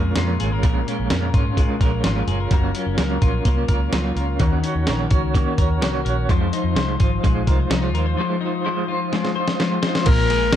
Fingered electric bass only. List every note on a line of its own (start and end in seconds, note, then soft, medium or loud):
0.00 0.12 F2 medium
0.16 0.36 F2 medium
0.41 0.60 G#1 medium
0.63 0.83 A#1 medium
1.00 1.09 A#1 medium
1.10 1.30 F2 medium
1.34 1.64 G#2 medium
1.80 2.01 A#1 medium
2.04 2.24 G#1 medium
2.27 2.48 F#1 medium
2.51 2.71 F#1 medium
2.86 2.97 F#1 medium
2.98 3.18 C#2 medium
3.22 3.42 A#1 medium
3.45 3.66 C2 medium
3.68 3.89 C#2 medium
3.93 4.13 C#2 medium
4.16 4.36 C#2 medium
4.40 4.60 D#2 medium
4.75 4.85 D#2 medium
4.87 5.08 A#1 medium
5.11 5.41 C#2 medium
5.58 5.82 D#2 medium
5.82 6.02 C2 medium
6.05 6.26 A#1 medium
6.29 6.49 F2 medium
6.64 6.74 F2 medium
6.75 6.96 C2 medium
7.00 7.20 G#1 medium
7.23 7.44 A#1 medium
7.47 7.67 C2 medium
7.70 7.94 C2 medium
7.94 8.14 D#2 medium
10.06 10.54 A#1 loud
10.53 10.56 F2 medium